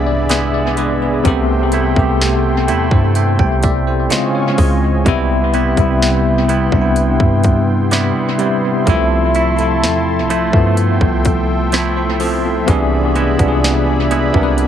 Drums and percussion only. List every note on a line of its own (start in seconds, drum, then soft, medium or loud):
0.29 snare loud
0.29 closed hi-hat medium
0.77 closed hi-hat medium
1.25 kick loud
1.25 closed hi-hat medium
1.72 closed hi-hat medium
1.96 kick loud
2.21 snare loud
2.68 closed hi-hat medium
2.91 kick loud
3.15 closed hi-hat medium
3.39 kick medium
3.63 kick medium
3.63 closed hi-hat medium
4.10 snare loud
4.10 closed hi-hat medium
4.58 kick medium
4.58 open hi-hat medium
5.06 kick loud
5.06 closed hi-hat medium
5.54 closed hi-hat medium
5.77 kick loud
5.77 closed hi-hat medium
6.02 snare loud
6.49 closed hi-hat medium
6.72 kick medium
6.96 closed hi-hat medium
7.20 kick medium
7.44 kick medium
7.44 closed hi-hat medium
7.91 snare loud
7.91 closed hi-hat medium
8.39 closed hi-hat medium
8.87 kick loud
8.87 closed hi-hat medium
9.35 closed hi-hat medium
9.59 closed hi-hat medium
9.84 snare loud
10.30 closed hi-hat medium
10.53 kick medium
10.77 closed hi-hat medium
11.01 kick medium
11.25 kick loud
11.25 closed hi-hat medium
11.72 snare loud
11.72 closed hi-hat medium
12.20 open hi-hat medium
12.68 kick loud
12.68 closed hi-hat medium
13.15 closed hi-hat medium
13.39 kick loud
13.39 closed hi-hat medium
13.64 snare loud
14.11 closed hi-hat medium
14.34 kick loud
14.58 closed hi-hat medium